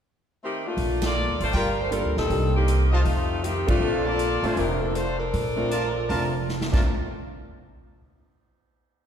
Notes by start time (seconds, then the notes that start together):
0.43 D#3 A3 C4 G4
0.66 A3 A#3 D4 F4
0.77 A#1, kick, open hi-hat
1.02 A#3 F4 A4 D5, snare, ride
1.28 D2
1.40 A1 A3 D4 F4 C5, open hi-hat
1.52 G1 G3 D4 F4 A#4 D5 G5, kick, open hi-hat
1.80 A3 D4 F4 C5
1.91 G3 A#3 D4 F4 A4 A#4, closed hi-hat
2.04 D2
2.16 A#1 G3 C4 D#4 A4, snare
2.28 C2 A#3 D4 D#4 G4, kick, open hi-hat
2.55 D#3 A#3 C4 G4
2.68 closed hi-hat
2.91 A3 C4 D#4 F4 C5 D#5 A5
3.05 F2, kick, open hi-hat
3.43 D#3 A3 C4 G4, closed hi-hat
3.66 C2 A3 A#3 C4 D4 F4 A4, kick, ride
3.80 A#1 F4 A4 D5 A5
4.05 A#3 F4 A4 D5
4.19 closed hi-hat
4.43 A1 A3 C4 D4 F4 C5, open hi-hat
4.56 F1 F3 A3 D4 A#4, kick, open hi-hat
4.81 F3 A#3 D4 A4
4.93 A3 D4 F4 C5, closed hi-hat
5.18 F3 D4 A4 A#4
5.34 A#1, kick, open hi-hat
5.56 A3 C4 D4 F4
5.71 F4 A#4 D5 A5, closed hi-hat
6.09 F1 A3 C4 D4 F4 A#4 D5 A5, kick, open hi-hat
6.49 snare
6.61 snare
6.72 A#1 A3 C4 D4 F4 A#4 D5 A5, kick, snare, crash